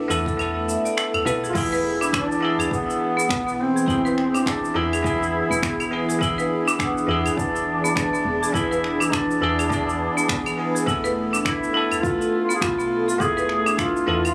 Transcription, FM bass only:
0.10 E2
1.26 B1
1.55 E1
3.29 B1
3.87 E1
4.75 E2
5.50 E1
7.08 E2
7.37 E1
8.25 E1
8.54 E1
9.12 B1
9.41 E2
10.87 E1
12.61 B1
13.20 E1
14.08 E2

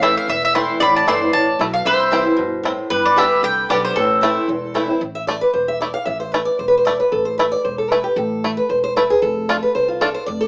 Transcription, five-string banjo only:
0.03 A3 E4
0.55 A3 E4
1.08 A3 E4
1.61 A3 E4
2.13 C4 E4
2.65 C4 E4
3.18 B3 D4 G4
3.71 B3 D4 G4
4.23 A3 E4
4.75 A3 E4
5.28 A3 E4
5.82 A3 E4
6.34 A3 E4
6.87 A3 E4
7.39 A3 E4
7.92 A3 E4
8.44 A3 E4
8.97 A3 E4
9.49 A3 D4 F4
10.01 A3 D4 F4

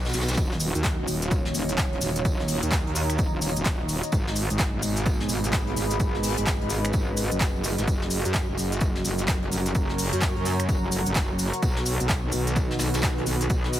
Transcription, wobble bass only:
Already playing: B1
0.14 B1
0.38 D#1
0.75 D#2
0.99 D#1
1.08 D#1
1.55 D#1
2.02 D#1
2.25 D#1
2.63 D#2
2.86 D#2
3.19 D#1
3.57 D#1
3.66 D#1
4.13 G#1
4.50 G#1
4.74 G#1
4.83 G#1
5.30 G#1
5.77 G#1
6.00 G#1
6.38 G#1
6.61 G#1
6.94 G#1
7.32 F#1
7.78 G#1
7.87 F#1
8.25 F#2
8.49 F#1
8.58 F#1
9.05 F#1
9.52 F#1
9.75 F#1
10.13 F#2
10.36 F#2
10.69 F#1
11.06 F#1
11.16 F#1
11.63 B1
12.00 B1
12.24 B1
12.33 B1
12.80 B1
13.27 B1
13.50 B1

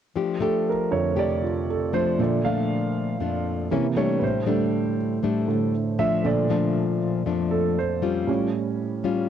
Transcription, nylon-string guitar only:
0.16 F3 A3 D4 G4
0.40 A3 D4 G4
1.16 C3 A3 D4 G4
1.93 F3 A3 D4
2.19 A#2
2.45 F3 A3 D4
3.20 F2 F3 A3 D4
3.72 E3 A#3 C#4
3.96 G3 A3 D4
4.22 A2
4.46 G3 A3 D4
5.23 A2 G3 A3 D4
5.99 F3 A3 D4
6.25 A#2
6.50 F3 A3 D4
7.26 F2 F3 A3 D4
8.02 G3 C#4 F4
8.28 A2
9.04 G3 C#4 F4

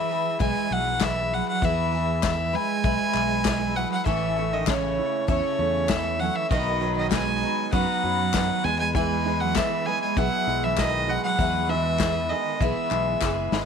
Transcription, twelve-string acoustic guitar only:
0.09 E4 G#4 B4
0.40 E3 E4 G#4 B4
1.00 E3 E4 G#4 B4
1.62 E3 E4 G#4 B4
1.92 E4 G#4 B4
2.23 E3 E4 G#4 B4
2.53 E4 G#4 B4
2.84 E3 E4 G#4 B4
3.45 E3 E4 G#4 B4
3.76 E4 G#4 B4
4.05 A3 C#4 E4 C#5
4.36 C#4 E4 C#5
4.67 A3 C#4 E4 C#5
5.28 A3 C#4 E4 C#5
5.89 A3 C#4 E4 C#5
6.20 C#4 E4 C#5
6.51 B2 B3 D#4 F#4 B4
6.81 D#4 F#4 B4
7.11 B3 D#4 F#4 B4
7.41 D#4 F#4 B4
7.72 B2 B3 D#4 F#4 B4
8.33 B3 D#4 F#4 B4
8.64 E4 G#4 B4
8.95 E3 E4 G#4 B4
9.26 E4 G#4 B4
9.56 E3 E4 G#4 B4
9.87 E4 G#4 B4
10.17 E3 E4 G#4 B4
10.80 G#4 B4
11.39 E3 E4 G#4 B4
11.69 E4 G#4 B4
12.02 G#4 B4
12.61 E3 E4 G#4 B4
13.22 E3 E4 G#4 B4
13.52 E4 G#4 B4

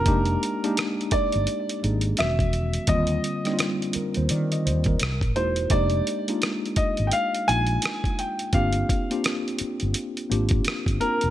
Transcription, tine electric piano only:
0.06 G#3 A#3 D4 D#4 G4
0.63 G#3 A#3 D4 D#4 G4
1.83 G#3 A#3 D4 D#4 G#4
2.18 D#3 F#3 B3 C#4 F#4
2.24 G#3
2.88 D3 G3 A#3 C4 F4
3.45 G3 A#3 C4 D4 D#4
3.54 F4
3.96 A#4
4.17 C5
4.31 D5
4.52 D#5
4.66 C5
4.88 A#4
5.36 G#3 A#3 D#4 E4 F#4
5.71 G#3 A#3 D4 D#4 G4
6.28 G#3 A#3 D4 D#4 F4
7.47 G#3 A#3 D4 D#4 F4
8.53 A#3 C4 D4 F4 G4
9.10 A#3 C4 D4 F4 G4
10.30 A#3 C4 D4 F4 G4
11.00 A#3 C4 D4 F4 A#4

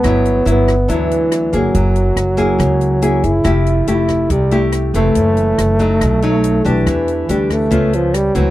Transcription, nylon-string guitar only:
0.03 G2 F#3 B3 E4
0.45 F#3 B3 E4
0.88 D3 F#3 B3 E4
1.53 A#3 E4 G#4
1.74 F#3
2.37 A#3 E4 G#4
2.59 C#3
3.02 A#3 E4 G#4
3.44 F3 A3 E4 G4
3.87 A3 E4 G4
4.30 C3
4.51 A3 E4 G4
4.95 E3 A3 C4
5.16 F#2
5.79 F#3 A3 D#4
6.01 B2
6.22 F#3 A3 D#4
6.65 A3 D4 G4
6.87 E3
7.29 A3 D4 G4
7.71 C#3 A3 B3 F4
8.35 E3 A3 C4

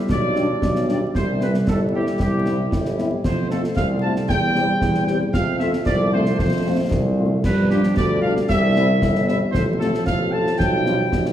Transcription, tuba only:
0.09 B1
0.62 B1
1.14 C2
1.67 G1
2.20 C2
2.72 G1
3.25 F2
3.76 C2
4.29 E2
4.82 E2
5.34 F2
5.86 C2
6.40 F2
6.92 C2
7.45 G2
7.97 D2
8.49 C2
9.01 G1
9.54 A1
10.07 A1
10.60 B1
11.12 B1

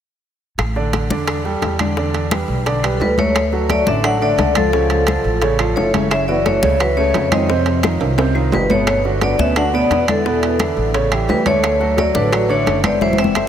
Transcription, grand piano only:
0.76 D3 D4 D5
1.11 D3 D4 D5
1.45 G3 G4 A4
1.80 D3 D4 D5
1.98 D3 D4 D5
2.32 G3 G4 B4
2.66 D3 D4 D5
2.84 G3 G4 B4
3.17 F#3 F#4 A4
3.52 F#3 F#4 A4
3.70 F#3 F#4 A4
3.87 D3 D4 D5
4.04 F#3 F#4 A4
4.21 D3 D4 D5
4.56 F3 F4 A4
4.73 C#3 C#4 C#5
5.08 F3 F4 A4
5.42 C#3 C#4 C#5
5.60 F3 F4 A4
5.94 C#3 C#4 C#5
6.28 E3 E4 F#4
6.45 E3 E4 F#4
6.62 C#3 C#4 C#5
6.79 E3 E4 F#4
6.97 C#3 C#4 C#5
7.32 D#3 D#4 F4
7.49 C3 C4 C5
7.84 D#3 D#4 F4
8.18 C3 C4 C5
8.35 D#3 D#4 F4
8.70 B2 B3 B4
9.05 D3 D4 F#4
9.21 D3 D4 F#4
9.39 B2 B3 B4
9.56 D3 D4 F#4
9.73 B2 B3 B4
10.08 D3 D4 E4
10.26 B2 B3 B4
10.60 D3 D4 E4
10.94 C#3 C#4 C#5
11.12 E3 E4 G4
11.46 D3 D4 C#5
11.80 F#3 F#4 A4
11.97 F#3 F#4 A4
12.15 D3 D4 D5
12.32 F#3 F#4 A4
12.49 D3 D4 C#5
12.83 A3 A4 C5
13.01 E3 E4 E5
13.36 A3 A4 C5

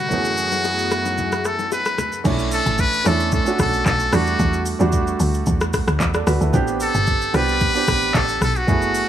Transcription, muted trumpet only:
Already playing: F#4
1.46 A4
1.73 B4
2.53 A4
2.80 B4
3.07 A4
3.34 A4
3.61 A4
3.87 A4
4.15 F#4
6.82 A4
7.36 B4
8.16 A4
8.43 A4
8.57 F#4

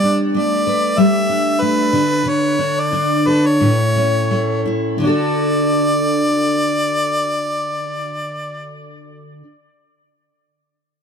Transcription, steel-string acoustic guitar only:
Already playing: G3 B3 G4 B4
0.03 D4
0.34 A3
0.67 B4
0.97 G3
1.29 D4
1.62 A3
1.93 D3
2.25 D3
2.59 D4
2.92 D4
3.26 A4
3.60 A2
3.96 C#4
4.31 A3
4.65 E4
4.98 D3 D4
5.05 F#4 A4

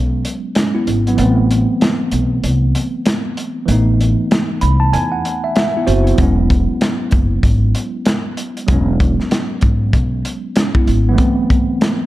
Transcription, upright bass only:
Already playing: B1
0.87 G#1
1.18 A1
2.12 B1
2.43 C2
3.68 A1
4.62 C2
4.93 E2
5.87 F#1
6.18 E1
7.13 F#1
7.43 G#1
8.68 E1
9.63 G#1
9.93 B1
10.87 G#1

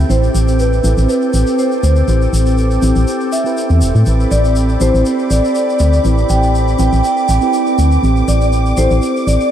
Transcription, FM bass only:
0.10 A1
0.35 A1
0.84 A1
0.97 A1
1.34 A1
1.83 D2
2.08 A1
2.33 A1
2.83 A1
2.96 A1
3.70 E2
3.82 E1
3.95 A2
4.07 A1
4.32 A1
4.81 A1
4.94 A1
5.31 A1
5.80 D2
6.05 A1
6.30 A1
6.79 A1
6.93 A1
7.29 A1
7.79 D2
8.03 A1
8.28 A1
8.78 A1
8.91 A1
9.27 A1

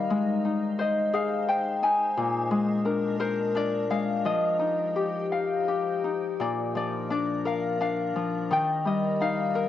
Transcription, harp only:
Already playing: D#3 G3 D#4 A#4 C5 D#5 F5
0.10 G#3
0.45 D#4
0.79 C5 D#5
1.13 G#4 F5
1.49 C5 G5
1.83 D#4 G#5
2.17 A#2
2.51 G#3
2.85 D4 A#4
3.20 A#4 C5
3.55 D4 D5
3.90 G#3 F5
4.25 F3 D#5
4.59 D#4
4.96 G4
5.32 F5
5.68 G4
6.04 D#4
6.40 A#2 D5
6.75 F3 D5
7.10 D4 D5
7.45 A#4 F5
7.80 D4 F5
8.16 F3
8.50 D#3 G5
8.85 G3 D#5
9.20 D#4 F5
9.55 A#4

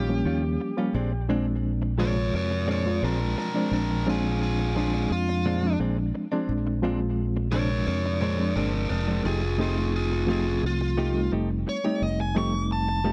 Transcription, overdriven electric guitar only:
Already playing: G4
2.00 A#4 C#5
2.36 A#4 C#5
2.71 A#4 C#5
3.04 D4 A#4
3.38 D4 A#4
3.73 D4 A#4
4.09 F4 G#4
4.42 F4 G#4
4.77 F4 G#4
5.12 F4
7.52 A#4 C#5
7.87 A#4 C#5
8.21 A#4 C#5
8.56 D4 A#4
8.90 D4 A#4
9.25 F4 G#4
9.61 F4 G#4
9.96 F4 G#4
10.30 F4 G#4
10.66 F4
11.69 C#5
12.03 D#5
12.21 G#5
12.38 C#6
12.72 A5

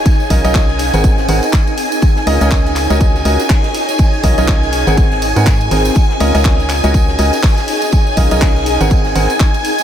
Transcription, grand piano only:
0.30 C#4 F4 A#4 D#5
0.45 C#4 F4 A#4 D#5
0.94 C4 G#4 A#4 F#5
1.29 C4 G#4 A#4 F#5
2.27 C#4 F4 A#4 D#5
2.41 C#4 F4 A#4 D#5
2.90 C#4 F#4 A#4 D#5
3.25 C#4 F#4 A#4 D#5
4.24 C#4 F4 A#4 D#5
4.38 C#4 F4 A#4 D#5
4.87 C4 G#4 A#4 F#5
5.36 C4 G#4 A#4 F#5
5.71 C4 G#4 A#4 G#5
6.20 C#4 F4 A#4 D#5
6.35 C#4 F4 A#4 D#5
6.84 C#4 F#4 A#4 D#5
7.19 C#4 F#4 A#4 D#5
8.17 C#4 F4 A#4 D#5
8.31 C#4 F4 A#4 D#5
8.81 C4 G#4 A#4 F#5
9.15 C4 G#4 A#4 F#5

